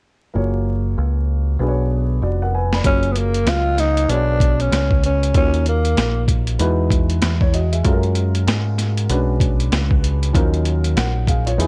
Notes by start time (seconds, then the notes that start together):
0.34 F#1 A#3 F4 F#4 G#4 C#5
0.98 C#2
1.59 B1 B3 D4 F#4 G#4 B4
1.68 C#5
2.22 F1 F#4 D5
2.42 A#4 F#5
2.55 B4 G#5
2.73 D5 B5, snare
2.84 F#1 F#3 A#3 C#4 F4 G#4 C#5, kick, closed hi-hat
3.03 closed hi-hat
3.12 B3, closed hi-hat
3.18 A#3
3.34 closed hi-hat
3.46 C#2 F4, snare, closed hi-hat
3.78 D#4, snare, closed hi-hat
3.97 closed hi-hat
4.08 B1 B3 D4 F#4 G#4 C#5, closed hi-hat
4.40 kick, closed hi-hat
4.60 C#4, closed hi-hat
4.71 C#2, snare, closed hi-hat
4.91 kick
5.04 C#4, closed hi-hat
5.23 closed hi-hat
5.34 D#2 A#3 C#4 D#4 F4 F#4 C#5, kick, closed hi-hat
5.54 closed hi-hat
5.66 A#3, closed hi-hat
5.85 closed hi-hat
5.97 A#1, snare, closed hi-hat
6.28 kick, closed hi-hat
6.47 closed hi-hat
6.59 E2 G#3 D#4 E4 F#4 B4, closed hi-hat
6.90 kick, closed hi-hat
7.10 closed hi-hat
7.22 E2, snare, closed hi-hat
7.41 E4 C#5, kick
7.54 F#4 D#5, closed hi-hat
7.73 G#4 E5, closed hi-hat
7.84 F#2 G#3 C#4 F4 F#4 A4, kick, closed hi-hat
7.93 A#4
8.03 closed hi-hat
8.15 closed hi-hat
8.35 closed hi-hat
8.47 G#2, snare, closed hi-hat
8.78 snare, closed hi-hat
8.97 closed hi-hat
9.09 B1 G#3 C#4 D4 F#4 B4, closed hi-hat
9.40 kick, closed hi-hat
9.60 closed hi-hat
9.72 C#2, snare, closed hi-hat
9.91 kick
10.04 closed hi-hat
10.23 closed hi-hat
10.33 D#2 F3 C#4 D#4 F4 A#4, kick, closed hi-hat
10.40 F#3
10.54 closed hi-hat
10.65 closed hi-hat
10.84 closed hi-hat
10.96 A#1 A#4 F#5, snare, closed hi-hat
11.27 G#4 F5, kick, closed hi-hat
11.47 F4 C#5, closed hi-hat
11.57 E2 F#3 B3 D#4 E4 G#4, closed hi-hat